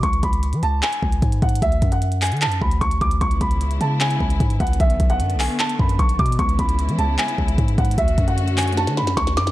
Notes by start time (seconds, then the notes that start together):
0.03 C#2 C#6, kick, closed hi-hat
0.13 closed hi-hat
0.23 C#2 B5, kick, closed hi-hat
0.33 closed hi-hat
0.43 closed hi-hat
0.53 E3, closed hi-hat
0.63 C#2 A5, closed hi-hat
0.83 G#5, clap, closed hi-hat
0.93 closed hi-hat
1.03 C#2, kick
1.12 closed hi-hat
1.22 G#2, kick, closed hi-hat
1.32 closed hi-hat
1.42 G#2 F#5, kick, closed hi-hat
1.49 closed hi-hat
1.55 closed hi-hat
1.62 D2 E5, kick, closed hi-hat
1.72 closed hi-hat
1.82 F#2, kick, closed hi-hat
1.92 F#5, closed hi-hat
2.02 closed hi-hat
2.12 closed hi-hat
2.22 G#5, clap, closed hi-hat, open hi-hat
2.27 closed hi-hat
2.32 D3, closed hi-hat
2.37 closed hi-hat
2.42 A5, clap, closed hi-hat
2.47 F#2
2.52 closed hi-hat
2.62 D2 B5, kick
2.71 closed hi-hat
2.81 D2 C#6, kick, closed hi-hat
2.91 closed hi-hat
3.01 D2 D6, kick, closed hi-hat
3.11 closed hi-hat
3.21 C#2 C#3 G#3 B3 E4 C#6, kick, closed hi-hat
3.31 closed hi-hat
3.41 C#2 B5, kick, closed hi-hat
3.51 closed hi-hat
3.61 closed hi-hat
3.71 closed hi-hat
3.81 C#3 A5, closed hi-hat
4.01 G#5, clap, closed hi-hat
4.10 closed hi-hat
4.20 C#2, kick
4.30 closed hi-hat
4.40 G#2, kick, closed hi-hat
4.50 closed hi-hat
4.60 C#2 F#5, kick, closed hi-hat
4.67 closed hi-hat
4.73 closed hi-hat
4.80 B1 D3 A3 E5, kick, closed hi-hat
4.90 closed hi-hat
5.00 B1, kick, closed hi-hat
5.10 F#5, closed hi-hat
5.20 F#2, closed hi-hat
5.30 closed hi-hat
5.35 B1
5.40 G#5, clap, open hi-hat
5.60 A5, clap, closed hi-hat
5.69 closed hi-hat
5.79 F#2 B5, kick
5.89 closed hi-hat
5.99 B1 C#6, kick, closed hi-hat
6.09 closed hi-hat
6.19 B2 D6, kick, closed hi-hat
6.26 closed hi-hat
6.32 closed hi-hat
6.39 C#2 C#3 G#3 E4 C#6, kick, closed hi-hat
6.49 closed hi-hat
6.59 C#2 B5, kick, closed hi-hat
6.69 closed hi-hat
6.79 closed hi-hat
6.89 E3, closed hi-hat
6.98 C#2 A5, closed hi-hat
7.18 G#5, clap, closed hi-hat
7.28 closed hi-hat
7.38 C#2, kick
7.48 closed hi-hat
7.58 G#2, kick, closed hi-hat
7.68 closed hi-hat
7.78 G#2 F#5, kick, closed hi-hat
7.85 closed hi-hat
7.91 closed hi-hat
7.98 D2 D3 A3 C#4 F#4 E5, kick, closed hi-hat
8.08 closed hi-hat
8.18 F#2, kick, closed hi-hat
8.28 F#5, closed hi-hat
8.38 closed hi-hat
8.48 closed hi-hat
8.58 G#5, clap, closed hi-hat, open hi-hat
8.63 closed hi-hat
8.68 closed hi-hat
8.73 closed hi-hat
8.77 A5, snare, closed hi-hat
8.87 D3, snare, closed hi-hat
8.97 B5, snare
9.02 F#2
9.07 snare, closed hi-hat
9.17 D2 C#6, kick, snare, closed hi-hat
9.27 snare, closed hi-hat
9.37 F#2 D6, snare, closed hi-hat
9.47 snare, closed hi-hat